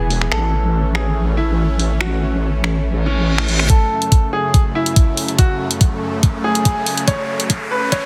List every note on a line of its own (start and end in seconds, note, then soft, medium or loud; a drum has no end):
0.00 0.30 E1 medium
0.00 3.66 E3 medium
0.00 0.28 B3 medium
0.00 0.24 G#4 medium
0.00 0.28 G#4 medium
0.10 open hi-hat medium
0.21 finger snap soft
0.32 3.68 A1 medium
0.32 3.66 A3 medium
0.32 3.66 C#4 medium
0.32 0.87 A4 loud
0.32 finger snap medium
0.95 1.23 G#4 medium
0.95 finger snap medium
1.37 1.93 E4 medium
1.79 open hi-hat medium
2.01 2.28 F#4 medium
2.01 finger snap medium
2.64 finger snap soft
2.85 reverse cymbal medium
3.06 3.62 C#4 medium
3.38 finger snap medium
3.48 open hi-hat medium
3.59 finger snap soft
3.70 8.06 F#2 medium
3.70 8.06 C#3 medium
3.70 8.06 A3 medium
3.70 4.25 A4 medium
3.70 kick medium
3.70 closed hi-hat medium
3.70 riser medium
4.02 closed hi-hat medium
4.12 kick medium
4.12 closed hi-hat medium
4.33 4.61 G#4 medium
4.54 kick loud
4.54 closed hi-hat medium
4.75 5.31 E4 medium
4.86 closed hi-hat medium
4.96 kick loud
4.96 closed hi-hat medium
5.17 open hi-hat loud
5.28 closed hi-hat soft
5.39 5.66 F#4 medium
5.39 kick medium
5.39 closed hi-hat medium
5.71 closed hi-hat medium
5.81 kick medium
5.81 closed hi-hat medium
6.23 kick medium
6.23 closed hi-hat medium
6.44 7.00 G#4 medium
6.55 closed hi-hat medium
6.65 kick medium
6.65 closed hi-hat medium
6.86 open hi-hat medium
6.97 closed hi-hat medium
7.08 7.63 C#5 medium
7.08 kick loud
7.08 closed hi-hat medium
7.40 closed hi-hat medium
7.50 kick loud
7.50 closed hi-hat medium
7.71 7.90 B4 medium
7.92 8.06 C#5 medium
7.92 kick loud
7.92 closed hi-hat medium